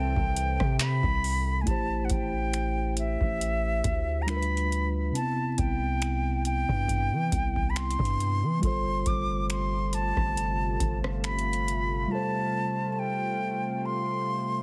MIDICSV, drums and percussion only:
0, 0, Header, 1, 2, 480
1, 0, Start_track
1, 0, Key_signature, 0, "major"
1, 0, Tempo, 869565
1, 922, Time_signature, 4, 2, 24, 8
1, 8075, End_track
2, 0, Start_track
2, 0, Title_t, "Drums"
2, 91, Note_on_c, 9, 36, 88
2, 146, Note_off_c, 9, 36, 0
2, 202, Note_on_c, 9, 42, 69
2, 257, Note_off_c, 9, 42, 0
2, 332, Note_on_c, 9, 37, 86
2, 334, Note_on_c, 9, 36, 103
2, 387, Note_off_c, 9, 37, 0
2, 389, Note_off_c, 9, 36, 0
2, 440, Note_on_c, 9, 42, 65
2, 442, Note_on_c, 9, 39, 108
2, 496, Note_off_c, 9, 42, 0
2, 497, Note_off_c, 9, 39, 0
2, 570, Note_on_c, 9, 36, 89
2, 625, Note_off_c, 9, 36, 0
2, 686, Note_on_c, 9, 46, 66
2, 741, Note_off_c, 9, 46, 0
2, 921, Note_on_c, 9, 36, 109
2, 921, Note_on_c, 9, 42, 61
2, 976, Note_off_c, 9, 36, 0
2, 976, Note_off_c, 9, 42, 0
2, 1157, Note_on_c, 9, 42, 66
2, 1161, Note_on_c, 9, 36, 93
2, 1212, Note_off_c, 9, 42, 0
2, 1216, Note_off_c, 9, 36, 0
2, 1399, Note_on_c, 9, 42, 67
2, 1401, Note_on_c, 9, 26, 94
2, 1455, Note_off_c, 9, 42, 0
2, 1457, Note_off_c, 9, 26, 0
2, 1638, Note_on_c, 9, 42, 61
2, 1693, Note_off_c, 9, 42, 0
2, 1771, Note_on_c, 9, 36, 84
2, 1826, Note_off_c, 9, 36, 0
2, 1884, Note_on_c, 9, 42, 66
2, 1939, Note_off_c, 9, 42, 0
2, 2121, Note_on_c, 9, 42, 74
2, 2122, Note_on_c, 9, 36, 93
2, 2177, Note_off_c, 9, 36, 0
2, 2177, Note_off_c, 9, 42, 0
2, 2362, Note_on_c, 9, 42, 49
2, 2363, Note_on_c, 9, 26, 101
2, 2417, Note_off_c, 9, 42, 0
2, 2419, Note_off_c, 9, 26, 0
2, 2443, Note_on_c, 9, 42, 51
2, 2498, Note_off_c, 9, 42, 0
2, 2523, Note_on_c, 9, 42, 50
2, 2579, Note_off_c, 9, 42, 0
2, 2607, Note_on_c, 9, 42, 56
2, 2662, Note_off_c, 9, 42, 0
2, 2845, Note_on_c, 9, 42, 61
2, 2900, Note_off_c, 9, 42, 0
2, 3080, Note_on_c, 9, 42, 68
2, 3082, Note_on_c, 9, 36, 91
2, 3135, Note_off_c, 9, 42, 0
2, 3138, Note_off_c, 9, 36, 0
2, 3322, Note_on_c, 9, 42, 62
2, 3324, Note_on_c, 9, 26, 96
2, 3377, Note_off_c, 9, 42, 0
2, 3379, Note_off_c, 9, 26, 0
2, 3561, Note_on_c, 9, 42, 61
2, 3616, Note_off_c, 9, 42, 0
2, 3692, Note_on_c, 9, 36, 84
2, 3747, Note_off_c, 9, 36, 0
2, 3801, Note_on_c, 9, 36, 89
2, 3805, Note_on_c, 9, 42, 68
2, 3856, Note_off_c, 9, 36, 0
2, 3860, Note_off_c, 9, 42, 0
2, 4042, Note_on_c, 9, 36, 87
2, 4042, Note_on_c, 9, 42, 75
2, 4097, Note_off_c, 9, 36, 0
2, 4097, Note_off_c, 9, 42, 0
2, 4175, Note_on_c, 9, 36, 96
2, 4230, Note_off_c, 9, 36, 0
2, 4283, Note_on_c, 9, 42, 48
2, 4285, Note_on_c, 9, 26, 107
2, 4339, Note_off_c, 9, 42, 0
2, 4340, Note_off_c, 9, 26, 0
2, 4364, Note_on_c, 9, 42, 50
2, 4411, Note_on_c, 9, 36, 90
2, 4419, Note_off_c, 9, 42, 0
2, 4445, Note_on_c, 9, 42, 53
2, 4467, Note_off_c, 9, 36, 0
2, 4500, Note_off_c, 9, 42, 0
2, 4529, Note_on_c, 9, 42, 56
2, 4584, Note_off_c, 9, 42, 0
2, 4763, Note_on_c, 9, 36, 108
2, 4764, Note_on_c, 9, 42, 63
2, 4818, Note_off_c, 9, 36, 0
2, 4819, Note_off_c, 9, 42, 0
2, 5001, Note_on_c, 9, 42, 70
2, 5003, Note_on_c, 9, 36, 85
2, 5056, Note_off_c, 9, 42, 0
2, 5058, Note_off_c, 9, 36, 0
2, 5242, Note_on_c, 9, 42, 61
2, 5245, Note_on_c, 9, 26, 95
2, 5298, Note_off_c, 9, 42, 0
2, 5300, Note_off_c, 9, 26, 0
2, 5481, Note_on_c, 9, 42, 60
2, 5536, Note_off_c, 9, 42, 0
2, 5613, Note_on_c, 9, 36, 85
2, 5614, Note_on_c, 9, 37, 60
2, 5668, Note_off_c, 9, 36, 0
2, 5670, Note_off_c, 9, 37, 0
2, 5726, Note_on_c, 9, 42, 65
2, 5782, Note_off_c, 9, 42, 0
2, 5963, Note_on_c, 9, 36, 90
2, 5964, Note_on_c, 9, 42, 78
2, 6018, Note_off_c, 9, 36, 0
2, 6019, Note_off_c, 9, 42, 0
2, 6095, Note_on_c, 9, 37, 88
2, 6151, Note_off_c, 9, 37, 0
2, 6204, Note_on_c, 9, 42, 51
2, 6205, Note_on_c, 9, 26, 109
2, 6259, Note_off_c, 9, 42, 0
2, 6261, Note_off_c, 9, 26, 0
2, 6285, Note_on_c, 9, 42, 51
2, 6340, Note_off_c, 9, 42, 0
2, 6365, Note_on_c, 9, 42, 51
2, 6420, Note_off_c, 9, 42, 0
2, 6448, Note_on_c, 9, 42, 58
2, 6504, Note_off_c, 9, 42, 0
2, 8075, End_track
0, 0, End_of_file